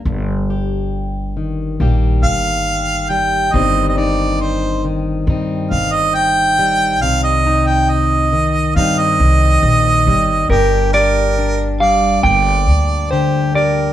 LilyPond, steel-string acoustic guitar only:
\new Staff \with { instrumentName = "Steel-string acoustic guitar" } { \clef bass \time 4/4 \key c \minor \tempo 4 = 69 << { r8 g'4. <g bes g'>4. g8 | <ees g c' ees'>8 ees'4. <g c' ees'>4. g8~ | g8 ees'4. <g c' ees'>4. g8 | d'8 g'8 d'4 bes8 d'4 g'8 | } \\ { g,4. ees2~ ees8 | g,4. ees2~ ees8 | c4. ees2~ ees8 | g,4. g4. d4 | } >> }